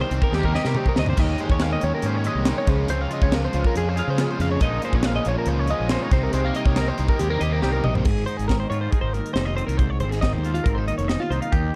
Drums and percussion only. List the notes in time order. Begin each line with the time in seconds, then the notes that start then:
0.11 closed hi-hat
0.22 kick
0.33 snare
0.43 kick
0.55 snare
0.65 snare
0.75 mid tom
0.86 kick
0.96 snare
1.06 floor tom
1.17 kick, closed hi-hat, crash
1.38 closed hi-hat
1.50 kick
1.60 snare, closed hi-hat
1.81 closed hi-hat
2.02 closed hi-hat
2.24 closed hi-hat
2.45 snare, closed hi-hat
2.67 kick, snare, closed hi-hat
2.88 closed hi-hat
3.11 closed hi-hat
3.22 kick
3.32 snare, closed hi-hat
3.53 closed hi-hat
3.64 kick
3.75 closed hi-hat
3.97 closed hi-hat
4.18 snare, closed hi-hat
4.40 snare, closed hi-hat
4.61 kick, closed hi-hat
4.82 closed hi-hat
4.93 kick
5.03 snare, closed hi-hat
5.25 closed hi-hat
5.46 closed hi-hat
5.67 closed hi-hat
5.89 snare, closed hi-hat
6.11 kick, snare, closed hi-hat
6.33 closed hi-hat
6.55 closed hi-hat
6.66 kick
6.76 snare, closed hi-hat
6.98 closed hi-hat
7.08 kick
7.19 closed hi-hat
7.41 closed hi-hat
7.62 snare
7.84 mid tom
7.95 floor tom
8.05 kick, crash
8.27 closed hi-hat
8.39 closed hi-hat
8.49 kick, snare, closed hi-hat
8.72 closed hi-hat
8.92 kick, closed hi-hat
9.14 closed hi-hat
9.26 closed hi-hat
9.36 snare, closed hi-hat
9.58 closed hi-hat
9.69 closed hi-hat
9.79 kick, closed hi-hat
10.00 closed hi-hat
10.12 snare, closed hi-hat
10.22 kick, snare, closed hi-hat
10.44 closed hi-hat
10.55 closed hi-hat
10.66 kick, closed hi-hat
10.88 closed hi-hat
10.99 closed hi-hat
11.09 snare, closed hi-hat
11.32 closed hi-hat
11.42 closed hi-hat
11.53 kick, closed hi-hat